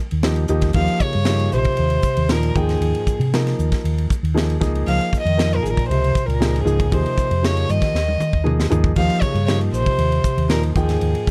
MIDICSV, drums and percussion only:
0, 0, Header, 1, 2, 480
1, 0, Start_track
1, 0, Tempo, 513699
1, 695, Time_signature, 4, 2, 24, 8
1, 10566, End_track
2, 0, Start_track
2, 0, Title_t, "Drums"
2, 103, Note_on_c, 9, 51, 52
2, 196, Note_off_c, 9, 51, 0
2, 215, Note_on_c, 9, 51, 65
2, 217, Note_on_c, 9, 38, 93
2, 309, Note_off_c, 9, 51, 0
2, 311, Note_off_c, 9, 38, 0
2, 335, Note_on_c, 9, 51, 50
2, 429, Note_off_c, 9, 51, 0
2, 449, Note_on_c, 9, 44, 71
2, 542, Note_off_c, 9, 44, 0
2, 573, Note_on_c, 9, 51, 51
2, 575, Note_on_c, 9, 38, 29
2, 580, Note_on_c, 9, 36, 74
2, 667, Note_off_c, 9, 51, 0
2, 668, Note_off_c, 9, 38, 0
2, 673, Note_off_c, 9, 36, 0
2, 684, Note_on_c, 9, 51, 66
2, 696, Note_on_c, 9, 36, 97
2, 777, Note_off_c, 9, 51, 0
2, 789, Note_off_c, 9, 36, 0
2, 822, Note_on_c, 9, 51, 51
2, 915, Note_off_c, 9, 51, 0
2, 934, Note_on_c, 9, 44, 69
2, 937, Note_on_c, 9, 36, 72
2, 1028, Note_off_c, 9, 44, 0
2, 1031, Note_off_c, 9, 36, 0
2, 1055, Note_on_c, 9, 51, 51
2, 1148, Note_off_c, 9, 51, 0
2, 1169, Note_on_c, 9, 51, 72
2, 1171, Note_on_c, 9, 38, 89
2, 1263, Note_off_c, 9, 51, 0
2, 1264, Note_off_c, 9, 38, 0
2, 1304, Note_on_c, 9, 51, 51
2, 1397, Note_off_c, 9, 51, 0
2, 1419, Note_on_c, 9, 44, 70
2, 1513, Note_off_c, 9, 44, 0
2, 1537, Note_on_c, 9, 51, 55
2, 1544, Note_on_c, 9, 36, 70
2, 1630, Note_off_c, 9, 51, 0
2, 1638, Note_off_c, 9, 36, 0
2, 1652, Note_on_c, 9, 51, 70
2, 1745, Note_off_c, 9, 51, 0
2, 1775, Note_on_c, 9, 51, 52
2, 1868, Note_off_c, 9, 51, 0
2, 1891, Note_on_c, 9, 44, 72
2, 1899, Note_on_c, 9, 36, 74
2, 1984, Note_off_c, 9, 44, 0
2, 1993, Note_off_c, 9, 36, 0
2, 2024, Note_on_c, 9, 51, 59
2, 2118, Note_off_c, 9, 51, 0
2, 2141, Note_on_c, 9, 51, 72
2, 2143, Note_on_c, 9, 38, 92
2, 2234, Note_off_c, 9, 51, 0
2, 2236, Note_off_c, 9, 38, 0
2, 2270, Note_on_c, 9, 51, 58
2, 2363, Note_off_c, 9, 51, 0
2, 2388, Note_on_c, 9, 36, 88
2, 2390, Note_on_c, 9, 44, 72
2, 2482, Note_off_c, 9, 36, 0
2, 2483, Note_off_c, 9, 44, 0
2, 2513, Note_on_c, 9, 51, 58
2, 2515, Note_on_c, 9, 38, 27
2, 2607, Note_off_c, 9, 51, 0
2, 2608, Note_off_c, 9, 38, 0
2, 2632, Note_on_c, 9, 51, 77
2, 2725, Note_off_c, 9, 51, 0
2, 2753, Note_on_c, 9, 51, 58
2, 2846, Note_off_c, 9, 51, 0
2, 2868, Note_on_c, 9, 36, 72
2, 2868, Note_on_c, 9, 44, 75
2, 2961, Note_off_c, 9, 36, 0
2, 2962, Note_off_c, 9, 44, 0
2, 2998, Note_on_c, 9, 51, 57
2, 3092, Note_off_c, 9, 51, 0
2, 3117, Note_on_c, 9, 51, 72
2, 3119, Note_on_c, 9, 38, 88
2, 3211, Note_off_c, 9, 51, 0
2, 3212, Note_off_c, 9, 38, 0
2, 3240, Note_on_c, 9, 51, 57
2, 3242, Note_on_c, 9, 38, 26
2, 3334, Note_off_c, 9, 51, 0
2, 3335, Note_off_c, 9, 38, 0
2, 3356, Note_on_c, 9, 44, 75
2, 3449, Note_off_c, 9, 44, 0
2, 3476, Note_on_c, 9, 36, 71
2, 3482, Note_on_c, 9, 51, 56
2, 3484, Note_on_c, 9, 38, 28
2, 3569, Note_off_c, 9, 36, 0
2, 3575, Note_off_c, 9, 51, 0
2, 3577, Note_off_c, 9, 38, 0
2, 3600, Note_on_c, 9, 51, 71
2, 3693, Note_off_c, 9, 51, 0
2, 3722, Note_on_c, 9, 51, 51
2, 3815, Note_off_c, 9, 51, 0
2, 3835, Note_on_c, 9, 36, 74
2, 3844, Note_on_c, 9, 44, 76
2, 3928, Note_off_c, 9, 36, 0
2, 3937, Note_off_c, 9, 44, 0
2, 3968, Note_on_c, 9, 51, 51
2, 4062, Note_off_c, 9, 51, 0
2, 4087, Note_on_c, 9, 51, 69
2, 4089, Note_on_c, 9, 38, 88
2, 4180, Note_off_c, 9, 51, 0
2, 4182, Note_off_c, 9, 38, 0
2, 4203, Note_on_c, 9, 51, 53
2, 4296, Note_off_c, 9, 51, 0
2, 4312, Note_on_c, 9, 36, 94
2, 4320, Note_on_c, 9, 44, 76
2, 4322, Note_on_c, 9, 38, 28
2, 4406, Note_off_c, 9, 36, 0
2, 4414, Note_off_c, 9, 44, 0
2, 4416, Note_off_c, 9, 38, 0
2, 4442, Note_on_c, 9, 51, 55
2, 4535, Note_off_c, 9, 51, 0
2, 4560, Note_on_c, 9, 51, 70
2, 4653, Note_off_c, 9, 51, 0
2, 4681, Note_on_c, 9, 51, 51
2, 4775, Note_off_c, 9, 51, 0
2, 4792, Note_on_c, 9, 36, 68
2, 4800, Note_on_c, 9, 44, 68
2, 4885, Note_off_c, 9, 36, 0
2, 4894, Note_off_c, 9, 44, 0
2, 4919, Note_on_c, 9, 51, 53
2, 5012, Note_off_c, 9, 51, 0
2, 5037, Note_on_c, 9, 51, 67
2, 5039, Note_on_c, 9, 38, 90
2, 5131, Note_off_c, 9, 51, 0
2, 5133, Note_off_c, 9, 38, 0
2, 5168, Note_on_c, 9, 51, 48
2, 5261, Note_off_c, 9, 51, 0
2, 5283, Note_on_c, 9, 44, 71
2, 5376, Note_off_c, 9, 44, 0
2, 5395, Note_on_c, 9, 36, 70
2, 5409, Note_on_c, 9, 51, 51
2, 5488, Note_off_c, 9, 36, 0
2, 5503, Note_off_c, 9, 51, 0
2, 5523, Note_on_c, 9, 51, 70
2, 5616, Note_off_c, 9, 51, 0
2, 5646, Note_on_c, 9, 51, 50
2, 5739, Note_off_c, 9, 51, 0
2, 5749, Note_on_c, 9, 36, 75
2, 5757, Note_on_c, 9, 44, 75
2, 5843, Note_off_c, 9, 36, 0
2, 5850, Note_off_c, 9, 44, 0
2, 5883, Note_on_c, 9, 51, 57
2, 5977, Note_off_c, 9, 51, 0
2, 5996, Note_on_c, 9, 51, 69
2, 5998, Note_on_c, 9, 38, 97
2, 6089, Note_off_c, 9, 51, 0
2, 6091, Note_off_c, 9, 38, 0
2, 6127, Note_on_c, 9, 51, 56
2, 6221, Note_off_c, 9, 51, 0
2, 6231, Note_on_c, 9, 44, 72
2, 6324, Note_off_c, 9, 44, 0
2, 6352, Note_on_c, 9, 36, 80
2, 6358, Note_on_c, 9, 51, 57
2, 6445, Note_off_c, 9, 36, 0
2, 6452, Note_off_c, 9, 51, 0
2, 6468, Note_on_c, 9, 36, 90
2, 6476, Note_on_c, 9, 51, 74
2, 6562, Note_off_c, 9, 36, 0
2, 6570, Note_off_c, 9, 51, 0
2, 6595, Note_on_c, 9, 51, 57
2, 6688, Note_off_c, 9, 51, 0
2, 6706, Note_on_c, 9, 36, 69
2, 6711, Note_on_c, 9, 44, 73
2, 6799, Note_off_c, 9, 36, 0
2, 6805, Note_off_c, 9, 44, 0
2, 6831, Note_on_c, 9, 51, 56
2, 6924, Note_off_c, 9, 51, 0
2, 6955, Note_on_c, 9, 51, 71
2, 6957, Note_on_c, 9, 38, 96
2, 7049, Note_off_c, 9, 51, 0
2, 7050, Note_off_c, 9, 38, 0
2, 7073, Note_on_c, 9, 51, 56
2, 7167, Note_off_c, 9, 51, 0
2, 7186, Note_on_c, 9, 44, 74
2, 7280, Note_off_c, 9, 44, 0
2, 7305, Note_on_c, 9, 36, 75
2, 7313, Note_on_c, 9, 51, 54
2, 7314, Note_on_c, 9, 38, 28
2, 7399, Note_off_c, 9, 36, 0
2, 7406, Note_off_c, 9, 51, 0
2, 7408, Note_off_c, 9, 38, 0
2, 7430, Note_on_c, 9, 38, 52
2, 7524, Note_off_c, 9, 38, 0
2, 7553, Note_on_c, 9, 48, 43
2, 7647, Note_off_c, 9, 48, 0
2, 7665, Note_on_c, 9, 44, 75
2, 7665, Note_on_c, 9, 47, 56
2, 7759, Note_off_c, 9, 44, 0
2, 7759, Note_off_c, 9, 47, 0
2, 7786, Note_on_c, 9, 36, 55
2, 7880, Note_off_c, 9, 36, 0
2, 7910, Note_on_c, 9, 45, 65
2, 8003, Note_off_c, 9, 45, 0
2, 8033, Note_on_c, 9, 38, 60
2, 8126, Note_off_c, 9, 38, 0
2, 8145, Note_on_c, 9, 43, 76
2, 8145, Note_on_c, 9, 44, 72
2, 8238, Note_off_c, 9, 43, 0
2, 8238, Note_off_c, 9, 44, 0
2, 8260, Note_on_c, 9, 36, 73
2, 8353, Note_off_c, 9, 36, 0
2, 8374, Note_on_c, 9, 49, 84
2, 8376, Note_on_c, 9, 36, 93
2, 8467, Note_off_c, 9, 49, 0
2, 8469, Note_off_c, 9, 36, 0
2, 8502, Note_on_c, 9, 51, 54
2, 8596, Note_off_c, 9, 51, 0
2, 8610, Note_on_c, 9, 44, 70
2, 8614, Note_on_c, 9, 36, 72
2, 8704, Note_off_c, 9, 44, 0
2, 8707, Note_off_c, 9, 36, 0
2, 8741, Note_on_c, 9, 51, 54
2, 8834, Note_off_c, 9, 51, 0
2, 8860, Note_on_c, 9, 51, 62
2, 8862, Note_on_c, 9, 38, 91
2, 8954, Note_off_c, 9, 51, 0
2, 8956, Note_off_c, 9, 38, 0
2, 8980, Note_on_c, 9, 51, 49
2, 9073, Note_off_c, 9, 51, 0
2, 9099, Note_on_c, 9, 44, 69
2, 9192, Note_off_c, 9, 44, 0
2, 9216, Note_on_c, 9, 36, 72
2, 9220, Note_on_c, 9, 51, 52
2, 9310, Note_off_c, 9, 36, 0
2, 9314, Note_off_c, 9, 51, 0
2, 9331, Note_on_c, 9, 51, 71
2, 9424, Note_off_c, 9, 51, 0
2, 9456, Note_on_c, 9, 51, 50
2, 9549, Note_off_c, 9, 51, 0
2, 9570, Note_on_c, 9, 44, 75
2, 9571, Note_on_c, 9, 36, 72
2, 9663, Note_off_c, 9, 44, 0
2, 9664, Note_off_c, 9, 36, 0
2, 9698, Note_on_c, 9, 51, 58
2, 9792, Note_off_c, 9, 51, 0
2, 9807, Note_on_c, 9, 51, 76
2, 9809, Note_on_c, 9, 38, 97
2, 9901, Note_off_c, 9, 51, 0
2, 9903, Note_off_c, 9, 38, 0
2, 9935, Note_on_c, 9, 51, 56
2, 10029, Note_off_c, 9, 51, 0
2, 10051, Note_on_c, 9, 36, 91
2, 10053, Note_on_c, 9, 44, 70
2, 10145, Note_off_c, 9, 36, 0
2, 10146, Note_off_c, 9, 44, 0
2, 10173, Note_on_c, 9, 51, 59
2, 10175, Note_on_c, 9, 38, 29
2, 10267, Note_off_c, 9, 51, 0
2, 10269, Note_off_c, 9, 38, 0
2, 10290, Note_on_c, 9, 51, 70
2, 10383, Note_off_c, 9, 51, 0
2, 10416, Note_on_c, 9, 51, 55
2, 10510, Note_off_c, 9, 51, 0
2, 10534, Note_on_c, 9, 36, 74
2, 10566, Note_off_c, 9, 36, 0
2, 10566, End_track
0, 0, End_of_file